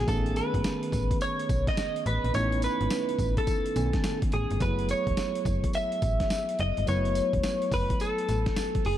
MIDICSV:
0, 0, Header, 1, 5, 480
1, 0, Start_track
1, 0, Tempo, 566038
1, 67, Time_signature, 4, 2, 24, 8
1, 7612, End_track
2, 0, Start_track
2, 0, Title_t, "Clean electric guitar"
2, 0, Program_c, 0, 27
2, 73, Note_on_c, 0, 69, 104
2, 293, Note_off_c, 0, 69, 0
2, 312, Note_on_c, 0, 71, 99
2, 995, Note_off_c, 0, 71, 0
2, 1033, Note_on_c, 0, 73, 101
2, 1425, Note_off_c, 0, 73, 0
2, 1428, Note_on_c, 0, 75, 96
2, 1728, Note_off_c, 0, 75, 0
2, 1755, Note_on_c, 0, 71, 92
2, 1988, Note_off_c, 0, 71, 0
2, 1991, Note_on_c, 0, 73, 112
2, 2236, Note_off_c, 0, 73, 0
2, 2240, Note_on_c, 0, 71, 94
2, 2834, Note_off_c, 0, 71, 0
2, 2867, Note_on_c, 0, 69, 99
2, 3550, Note_off_c, 0, 69, 0
2, 3677, Note_on_c, 0, 68, 98
2, 3919, Note_off_c, 0, 68, 0
2, 3920, Note_on_c, 0, 71, 106
2, 4137, Note_off_c, 0, 71, 0
2, 4163, Note_on_c, 0, 73, 103
2, 4841, Note_off_c, 0, 73, 0
2, 4878, Note_on_c, 0, 76, 113
2, 5597, Note_off_c, 0, 76, 0
2, 5601, Note_on_c, 0, 75, 116
2, 5817, Note_off_c, 0, 75, 0
2, 5839, Note_on_c, 0, 73, 111
2, 6557, Note_off_c, 0, 73, 0
2, 6560, Note_on_c, 0, 71, 100
2, 6795, Note_on_c, 0, 69, 99
2, 6801, Note_off_c, 0, 71, 0
2, 7511, Note_off_c, 0, 69, 0
2, 7514, Note_on_c, 0, 68, 96
2, 7612, Note_off_c, 0, 68, 0
2, 7612, End_track
3, 0, Start_track
3, 0, Title_t, "Tine electric piano"
3, 0, Program_c, 1, 4
3, 0, Control_c, 1, 64, 127
3, 0, Note_on_c, 1, 66, 65
3, 56, Note_on_c, 1, 51, 71
3, 59, Note_on_c, 1, 57, 61
3, 66, Note_on_c, 1, 59, 69
3, 71, Note_on_c, 1, 61, 65
3, 75, Note_on_c, 1, 68, 74
3, 79, Control_c, 1, 64, 0
3, 86, Note_off_c, 1, 66, 0
3, 229, Control_c, 1, 64, 127
3, 1948, Note_off_c, 1, 51, 0
3, 1949, Note_off_c, 1, 57, 0
3, 1953, Note_off_c, 1, 59, 0
3, 1955, Note_off_c, 1, 61, 0
3, 1957, Note_off_c, 1, 68, 0
3, 1980, Note_on_c, 1, 63, 74
3, 1984, Note_on_c, 1, 57, 67
3, 1988, Note_on_c, 1, 59, 64
3, 1994, Note_on_c, 1, 61, 67
3, 1999, Note_on_c, 1, 64, 81
3, 3159, Note_off_c, 1, 63, 0
3, 3162, Note_off_c, 1, 57, 0
3, 3164, Note_off_c, 1, 59, 0
3, 3166, Note_off_c, 1, 61, 0
3, 3169, Note_off_c, 1, 64, 0
3, 3183, Note_on_c, 1, 51, 54
3, 3187, Note_on_c, 1, 57, 47
3, 3188, Note_on_c, 1, 59, 51
3, 3191, Note_on_c, 1, 61, 51
3, 3194, Note_on_c, 1, 80, 57
3, 3893, Note_off_c, 1, 57, 0
3, 3898, Note_off_c, 1, 59, 0
3, 3898, Note_on_c, 1, 54, 72
3, 3903, Note_on_c, 1, 57, 61
3, 3905, Note_off_c, 1, 51, 0
3, 3908, Note_on_c, 1, 59, 63
3, 3909, Note_off_c, 1, 61, 0
3, 3910, Note_off_c, 1, 80, 0
3, 3913, Note_on_c, 1, 64, 69
3, 3917, Control_c, 1, 64, 0
3, 3917, Note_on_c, 1, 68, 73
3, 4072, Control_c, 1, 64, 127
3, 5788, Note_off_c, 1, 54, 0
3, 5791, Note_off_c, 1, 57, 0
3, 5794, Note_off_c, 1, 59, 0
3, 5796, Note_off_c, 1, 64, 0
3, 5798, Note_off_c, 1, 68, 0
3, 5817, Note_on_c, 1, 54, 67
3, 5821, Note_on_c, 1, 57, 61
3, 5827, Note_on_c, 1, 59, 65
3, 5832, Note_on_c, 1, 64, 66
3, 5836, Note_on_c, 1, 71, 73
3, 7612, Note_off_c, 1, 54, 0
3, 7612, Note_off_c, 1, 57, 0
3, 7612, Note_off_c, 1, 59, 0
3, 7612, Note_off_c, 1, 64, 0
3, 7612, Note_off_c, 1, 71, 0
3, 7612, End_track
4, 0, Start_track
4, 0, Title_t, "FM bass"
4, 0, Program_c, 2, 39
4, 66, Note_on_c, 2, 33, 109
4, 350, Note_off_c, 2, 33, 0
4, 458, Note_on_c, 2, 32, 98
4, 521, Note_off_c, 2, 32, 0
4, 785, Note_on_c, 2, 33, 94
4, 959, Note_off_c, 2, 33, 0
4, 1267, Note_on_c, 2, 35, 88
4, 1440, Note_off_c, 2, 35, 0
4, 1746, Note_on_c, 2, 33, 100
4, 1857, Note_off_c, 2, 33, 0
4, 1902, Note_on_c, 2, 34, 86
4, 1963, Note_off_c, 2, 34, 0
4, 1990, Note_on_c, 2, 33, 112
4, 2273, Note_off_c, 2, 33, 0
4, 2382, Note_on_c, 2, 32, 94
4, 2443, Note_off_c, 2, 32, 0
4, 2702, Note_on_c, 2, 33, 91
4, 2877, Note_off_c, 2, 33, 0
4, 3189, Note_on_c, 2, 35, 94
4, 3361, Note_off_c, 2, 35, 0
4, 3673, Note_on_c, 2, 33, 103
4, 3782, Note_off_c, 2, 33, 0
4, 3826, Note_on_c, 2, 31, 95
4, 3886, Note_off_c, 2, 31, 0
4, 3906, Note_on_c, 2, 30, 121
4, 4191, Note_off_c, 2, 30, 0
4, 4298, Note_on_c, 2, 28, 91
4, 4361, Note_off_c, 2, 28, 0
4, 4625, Note_on_c, 2, 30, 102
4, 4799, Note_off_c, 2, 30, 0
4, 5107, Note_on_c, 2, 33, 93
4, 5280, Note_off_c, 2, 33, 0
4, 5592, Note_on_c, 2, 30, 100
4, 5701, Note_off_c, 2, 30, 0
4, 5750, Note_on_c, 2, 31, 86
4, 5808, Note_off_c, 2, 31, 0
4, 5836, Note_on_c, 2, 30, 121
4, 6117, Note_off_c, 2, 30, 0
4, 6219, Note_on_c, 2, 28, 93
4, 6282, Note_off_c, 2, 28, 0
4, 6544, Note_on_c, 2, 30, 103
4, 6718, Note_off_c, 2, 30, 0
4, 7029, Note_on_c, 2, 33, 91
4, 7201, Note_off_c, 2, 33, 0
4, 7510, Note_on_c, 2, 30, 92
4, 7612, Note_off_c, 2, 30, 0
4, 7612, End_track
5, 0, Start_track
5, 0, Title_t, "Drums"
5, 65, Note_on_c, 9, 36, 111
5, 66, Note_on_c, 9, 42, 69
5, 66, Note_on_c, 9, 54, 65
5, 150, Note_off_c, 9, 36, 0
5, 151, Note_off_c, 9, 42, 0
5, 151, Note_off_c, 9, 54, 0
5, 221, Note_on_c, 9, 42, 52
5, 305, Note_on_c, 9, 54, 66
5, 306, Note_off_c, 9, 42, 0
5, 307, Note_on_c, 9, 42, 82
5, 390, Note_off_c, 9, 54, 0
5, 392, Note_off_c, 9, 42, 0
5, 458, Note_on_c, 9, 36, 89
5, 462, Note_on_c, 9, 42, 54
5, 543, Note_off_c, 9, 36, 0
5, 545, Note_off_c, 9, 42, 0
5, 545, Note_on_c, 9, 42, 59
5, 545, Note_on_c, 9, 54, 101
5, 546, Note_on_c, 9, 38, 117
5, 629, Note_off_c, 9, 42, 0
5, 630, Note_off_c, 9, 54, 0
5, 631, Note_off_c, 9, 38, 0
5, 702, Note_on_c, 9, 42, 60
5, 783, Note_on_c, 9, 36, 85
5, 787, Note_off_c, 9, 42, 0
5, 788, Note_on_c, 9, 42, 60
5, 789, Note_on_c, 9, 54, 73
5, 868, Note_off_c, 9, 36, 0
5, 872, Note_off_c, 9, 42, 0
5, 874, Note_off_c, 9, 54, 0
5, 940, Note_on_c, 9, 36, 96
5, 942, Note_on_c, 9, 42, 65
5, 1024, Note_on_c, 9, 54, 64
5, 1025, Note_off_c, 9, 36, 0
5, 1026, Note_off_c, 9, 42, 0
5, 1026, Note_on_c, 9, 42, 69
5, 1109, Note_off_c, 9, 54, 0
5, 1111, Note_off_c, 9, 42, 0
5, 1183, Note_on_c, 9, 42, 57
5, 1267, Note_on_c, 9, 36, 107
5, 1268, Note_off_c, 9, 42, 0
5, 1268, Note_on_c, 9, 54, 71
5, 1269, Note_on_c, 9, 42, 83
5, 1352, Note_off_c, 9, 36, 0
5, 1352, Note_off_c, 9, 54, 0
5, 1354, Note_off_c, 9, 42, 0
5, 1419, Note_on_c, 9, 36, 91
5, 1419, Note_on_c, 9, 38, 66
5, 1420, Note_on_c, 9, 42, 54
5, 1504, Note_off_c, 9, 36, 0
5, 1504, Note_off_c, 9, 38, 0
5, 1504, Note_off_c, 9, 42, 0
5, 1504, Note_on_c, 9, 38, 119
5, 1504, Note_on_c, 9, 42, 76
5, 1505, Note_on_c, 9, 54, 108
5, 1589, Note_off_c, 9, 38, 0
5, 1589, Note_off_c, 9, 42, 0
5, 1589, Note_off_c, 9, 54, 0
5, 1663, Note_on_c, 9, 42, 60
5, 1747, Note_off_c, 9, 42, 0
5, 1747, Note_on_c, 9, 42, 80
5, 1832, Note_off_c, 9, 42, 0
5, 1903, Note_on_c, 9, 42, 58
5, 1985, Note_off_c, 9, 42, 0
5, 1985, Note_on_c, 9, 42, 72
5, 1986, Note_on_c, 9, 54, 68
5, 2070, Note_off_c, 9, 42, 0
5, 2070, Note_off_c, 9, 54, 0
5, 2140, Note_on_c, 9, 42, 56
5, 2222, Note_on_c, 9, 54, 68
5, 2224, Note_off_c, 9, 42, 0
5, 2224, Note_on_c, 9, 42, 84
5, 2307, Note_off_c, 9, 54, 0
5, 2309, Note_off_c, 9, 42, 0
5, 2380, Note_on_c, 9, 42, 53
5, 2462, Note_off_c, 9, 42, 0
5, 2462, Note_on_c, 9, 42, 61
5, 2463, Note_on_c, 9, 54, 104
5, 2464, Note_on_c, 9, 38, 103
5, 2547, Note_off_c, 9, 42, 0
5, 2548, Note_off_c, 9, 54, 0
5, 2549, Note_off_c, 9, 38, 0
5, 2618, Note_on_c, 9, 42, 60
5, 2702, Note_on_c, 9, 36, 87
5, 2703, Note_off_c, 9, 42, 0
5, 2705, Note_on_c, 9, 42, 62
5, 2706, Note_on_c, 9, 54, 72
5, 2787, Note_off_c, 9, 36, 0
5, 2790, Note_off_c, 9, 42, 0
5, 2791, Note_off_c, 9, 54, 0
5, 2859, Note_on_c, 9, 36, 93
5, 2859, Note_on_c, 9, 42, 65
5, 2942, Note_on_c, 9, 54, 72
5, 2943, Note_off_c, 9, 42, 0
5, 2944, Note_off_c, 9, 36, 0
5, 2944, Note_on_c, 9, 36, 100
5, 2944, Note_on_c, 9, 42, 76
5, 3027, Note_off_c, 9, 54, 0
5, 3029, Note_off_c, 9, 36, 0
5, 3029, Note_off_c, 9, 42, 0
5, 3101, Note_on_c, 9, 42, 57
5, 3186, Note_off_c, 9, 42, 0
5, 3186, Note_on_c, 9, 54, 66
5, 3188, Note_on_c, 9, 42, 79
5, 3271, Note_off_c, 9, 54, 0
5, 3273, Note_off_c, 9, 42, 0
5, 3336, Note_on_c, 9, 38, 65
5, 3337, Note_on_c, 9, 42, 53
5, 3339, Note_on_c, 9, 36, 102
5, 3421, Note_off_c, 9, 38, 0
5, 3422, Note_off_c, 9, 42, 0
5, 3423, Note_off_c, 9, 36, 0
5, 3424, Note_on_c, 9, 38, 122
5, 3424, Note_on_c, 9, 42, 75
5, 3424, Note_on_c, 9, 54, 100
5, 3509, Note_off_c, 9, 38, 0
5, 3509, Note_off_c, 9, 42, 0
5, 3509, Note_off_c, 9, 54, 0
5, 3580, Note_on_c, 9, 36, 107
5, 3580, Note_on_c, 9, 42, 58
5, 3663, Note_off_c, 9, 42, 0
5, 3663, Note_on_c, 9, 42, 81
5, 3665, Note_off_c, 9, 36, 0
5, 3748, Note_off_c, 9, 42, 0
5, 3820, Note_on_c, 9, 42, 54
5, 3904, Note_off_c, 9, 42, 0
5, 3904, Note_on_c, 9, 42, 73
5, 3905, Note_on_c, 9, 36, 109
5, 3905, Note_on_c, 9, 54, 68
5, 3989, Note_off_c, 9, 42, 0
5, 3989, Note_off_c, 9, 54, 0
5, 3990, Note_off_c, 9, 36, 0
5, 4059, Note_on_c, 9, 42, 50
5, 4143, Note_on_c, 9, 54, 66
5, 4144, Note_off_c, 9, 42, 0
5, 4145, Note_on_c, 9, 42, 85
5, 4228, Note_off_c, 9, 54, 0
5, 4229, Note_off_c, 9, 42, 0
5, 4298, Note_on_c, 9, 36, 86
5, 4299, Note_on_c, 9, 42, 49
5, 4383, Note_off_c, 9, 36, 0
5, 4384, Note_off_c, 9, 42, 0
5, 4385, Note_on_c, 9, 42, 57
5, 4385, Note_on_c, 9, 54, 94
5, 4386, Note_on_c, 9, 38, 116
5, 4470, Note_off_c, 9, 42, 0
5, 4470, Note_off_c, 9, 54, 0
5, 4471, Note_off_c, 9, 38, 0
5, 4540, Note_on_c, 9, 42, 62
5, 4624, Note_on_c, 9, 36, 90
5, 4625, Note_off_c, 9, 42, 0
5, 4627, Note_on_c, 9, 42, 60
5, 4629, Note_on_c, 9, 54, 72
5, 4709, Note_off_c, 9, 36, 0
5, 4712, Note_off_c, 9, 42, 0
5, 4714, Note_off_c, 9, 54, 0
5, 4781, Note_on_c, 9, 36, 89
5, 4781, Note_on_c, 9, 42, 66
5, 4862, Note_on_c, 9, 54, 63
5, 4864, Note_off_c, 9, 42, 0
5, 4864, Note_on_c, 9, 42, 76
5, 4866, Note_off_c, 9, 36, 0
5, 4947, Note_off_c, 9, 54, 0
5, 4948, Note_off_c, 9, 42, 0
5, 5020, Note_on_c, 9, 42, 55
5, 5104, Note_on_c, 9, 54, 64
5, 5105, Note_off_c, 9, 42, 0
5, 5106, Note_on_c, 9, 42, 80
5, 5107, Note_on_c, 9, 36, 106
5, 5189, Note_off_c, 9, 54, 0
5, 5191, Note_off_c, 9, 42, 0
5, 5192, Note_off_c, 9, 36, 0
5, 5257, Note_on_c, 9, 38, 67
5, 5258, Note_on_c, 9, 42, 54
5, 5260, Note_on_c, 9, 36, 89
5, 5342, Note_off_c, 9, 38, 0
5, 5343, Note_off_c, 9, 42, 0
5, 5345, Note_off_c, 9, 36, 0
5, 5345, Note_on_c, 9, 42, 78
5, 5346, Note_on_c, 9, 38, 117
5, 5346, Note_on_c, 9, 54, 113
5, 5430, Note_off_c, 9, 38, 0
5, 5430, Note_off_c, 9, 42, 0
5, 5431, Note_off_c, 9, 54, 0
5, 5502, Note_on_c, 9, 42, 64
5, 5586, Note_off_c, 9, 42, 0
5, 5586, Note_on_c, 9, 42, 79
5, 5670, Note_off_c, 9, 42, 0
5, 5742, Note_on_c, 9, 42, 56
5, 5827, Note_off_c, 9, 42, 0
5, 5827, Note_on_c, 9, 42, 73
5, 5827, Note_on_c, 9, 54, 65
5, 5912, Note_off_c, 9, 42, 0
5, 5912, Note_off_c, 9, 54, 0
5, 5981, Note_on_c, 9, 42, 55
5, 6065, Note_off_c, 9, 42, 0
5, 6065, Note_on_c, 9, 54, 69
5, 6067, Note_on_c, 9, 42, 83
5, 6150, Note_off_c, 9, 54, 0
5, 6151, Note_off_c, 9, 42, 0
5, 6219, Note_on_c, 9, 36, 89
5, 6220, Note_on_c, 9, 42, 54
5, 6304, Note_off_c, 9, 36, 0
5, 6304, Note_off_c, 9, 42, 0
5, 6304, Note_on_c, 9, 42, 61
5, 6304, Note_on_c, 9, 54, 99
5, 6305, Note_on_c, 9, 38, 109
5, 6389, Note_off_c, 9, 42, 0
5, 6389, Note_off_c, 9, 54, 0
5, 6390, Note_off_c, 9, 38, 0
5, 6460, Note_on_c, 9, 42, 59
5, 6543, Note_on_c, 9, 36, 94
5, 6544, Note_off_c, 9, 42, 0
5, 6544, Note_on_c, 9, 46, 59
5, 6546, Note_on_c, 9, 54, 65
5, 6628, Note_off_c, 9, 36, 0
5, 6629, Note_off_c, 9, 46, 0
5, 6631, Note_off_c, 9, 54, 0
5, 6699, Note_on_c, 9, 42, 60
5, 6700, Note_on_c, 9, 36, 99
5, 6782, Note_on_c, 9, 54, 65
5, 6784, Note_off_c, 9, 42, 0
5, 6784, Note_on_c, 9, 42, 71
5, 6785, Note_off_c, 9, 36, 0
5, 6867, Note_off_c, 9, 54, 0
5, 6869, Note_off_c, 9, 42, 0
5, 6940, Note_on_c, 9, 42, 54
5, 7025, Note_off_c, 9, 42, 0
5, 7025, Note_on_c, 9, 54, 67
5, 7027, Note_on_c, 9, 42, 79
5, 7110, Note_off_c, 9, 54, 0
5, 7111, Note_off_c, 9, 42, 0
5, 7177, Note_on_c, 9, 38, 69
5, 7177, Note_on_c, 9, 42, 50
5, 7178, Note_on_c, 9, 36, 94
5, 7261, Note_off_c, 9, 38, 0
5, 7262, Note_off_c, 9, 42, 0
5, 7263, Note_off_c, 9, 36, 0
5, 7263, Note_on_c, 9, 38, 126
5, 7263, Note_on_c, 9, 42, 76
5, 7263, Note_on_c, 9, 54, 108
5, 7347, Note_off_c, 9, 42, 0
5, 7348, Note_off_c, 9, 38, 0
5, 7348, Note_off_c, 9, 54, 0
5, 7418, Note_on_c, 9, 42, 61
5, 7420, Note_on_c, 9, 36, 105
5, 7503, Note_off_c, 9, 42, 0
5, 7503, Note_on_c, 9, 46, 74
5, 7505, Note_off_c, 9, 36, 0
5, 7588, Note_off_c, 9, 46, 0
5, 7612, End_track
0, 0, End_of_file